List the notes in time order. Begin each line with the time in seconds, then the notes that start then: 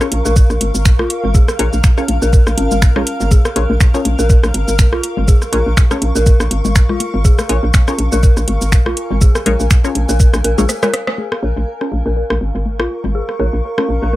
Already playing: A#4 F5 C#6
0.01 C#4 F4 G#4 A#4 C#5, cross-stick, shaker
0.08 A#1 F6, closed hi-hat
0.25 A#1 A#4, high conga, shaker
0.36 A#4, kick, shaker
0.50 A#1, cross-stick, shaker
0.61 G#1, closed hi-hat, high conga
0.75 G#1, shaker
0.85 finger snap, kick, shaker
0.99 A#1 F4, cross-stick, high conga
1.10 closed hi-hat
1.24 G#1, low conga
1.35 G#4, kick, high conga, shaker
1.48 cross-stick, shaker
1.59 A#1 F4 G#4 A#4 C#5, closed hi-hat
1.73 A#1, high conga, shaker
1.84 finger snap, kick, shaker
1.98 C#4 F4 G#4 A#4 C#5, cross-stick, shaker
2.08 A#1, closed hi-hat, high conga
2.22 A#1 A#4, shaker
2.33 A#4, kick, shaker
2.47 A#1, cross-stick, high conga, shaker
2.58 G#1 C#4, closed hi-hat
2.71 G#1, low conga, shaker
2.82 finger snap, kick, high conga, shaker
2.96 A#1 C#4 F4 G#4 A#4 C#5, cross-stick, low conga
3.07 closed hi-hat
3.21 G#1, high conga, shaker
3.31 G#4, kick, high conga, shaker
3.45 cross-stick, shaker
3.56 A#1 F4 G#4 A#4 C#5, closed hi-hat
3.70 A#1, high conga
3.81 finger snap, kick, shaker
3.94 C#4 F4 G#4 A#4 C#5, cross-stick, shaker
4.02 A#1 C#6, closed hi-hat, high conga
4.19 A#1 A#4, shaker
4.30 A#4, kick, shaker
4.43 A#1, cross-stick, high conga, shaker
4.54 G#1, closed hi-hat
4.68 G#1, shaker
4.79 finger snap, kick, high conga, shaker
4.93 A#1 F4, cross-stick
5.03 closed hi-hat
5.17 G#1, high conga, low conga
5.28 G#4, kick, shaker
5.42 cross-stick, shaker
5.53 A#1 F4 G#4 A#4 C#5, closed hi-hat, high conga
5.66 A#1
5.77 finger snap, kick, shaker
5.91 C#4 F4 G#4 A#4 C#5, cross-stick, high conga, shaker
6.02 A#1, closed hi-hat
6.16 A#1 A#4, shaker
6.26 A#4, kick, high conga, shaker
6.40 A#1, cross-stick, shaker
6.51 G#1, closed hi-hat
6.65 G#1, high conga, low conga, shaker
6.76 finger snap, kick, shaker
6.89 A#1 F4, cross-stick, low conga
7.00 closed hi-hat, high conga
7.14 G#1
7.25 G#4, kick, shaker
7.39 cross-stick, high conga, shaker
7.49 A#1 F4 G#4 A#4 C#5, closed hi-hat
7.63 A#1
7.74 finger snap, kick, high conga, shaker
7.88 C#4 F4 G#4 A#4 C#5, cross-stick, shaker
7.95 A#1 G#5, closed hi-hat
8.12 A#1 A#4, high conga, shaker
8.23 A#4, kick, shaker
8.37 A#1, cross-stick, shaker
8.48 G#1, closed hi-hat, high conga
8.61 G#1, shaker
8.72 finger snap, kick, shaker
8.86 A#1 F4, cross-stick, high conga
8.97 closed hi-hat
9.11 G#1, low conga
9.21 G#4, kick, high conga, shaker
9.35 cross-stick, shaker
9.46 A#1 F4 G#4 A#4 C#5, closed hi-hat, low conga
9.60 A#1, high conga, shaker
9.71 finger snap, kick, shaker
9.84 C#4 F4 G#4 A#4 C#5, cross-stick, shaker
9.95 A#1, closed hi-hat, high conga
10.09 A#1 A#4, shaker
10.20 A#4, kick, shaker
10.34 A#1, cross-stick, high conga, shaker
10.44 A#1 A#4, closed hi-hat
10.58 A#1 F4 G#4 A#4 C#5, low conga, shaker
10.69 cross-stick, high conga, shaker
10.83 F4 G#4 A#4 C#5, cross-stick, low conga, shaker
10.94 cross-stick, closed hi-hat
11.07 cross-stick, high conga
11.18 G#4 A#4, high conga
11.32 C#6, cross-stick
11.38 F5
11.43 A#1 F4 G#4 A#4 C#5
11.57 A#1, high conga
11.81 C#4 F4 G#4 A#4 C#5, cross-stick
11.92 A#1, high conga
12.06 A#1 A#4
12.17 A#4
12.30 A#1, cross-stick, high conga
12.41 G#1
12.55 G#1
12.66 high conga
12.79 A#1 F4, cross-stick
13.04 G#1, high conga, low conga
13.15 G#4
13.29 cross-stick
13.40 A#1 F4 G#4 A#4 C#5, high conga
13.53 A#1
13.78 C#4 F4 G#4 A#4 C#5, cross-stick, high conga
13.89 A#1
14.02 A#1 A#4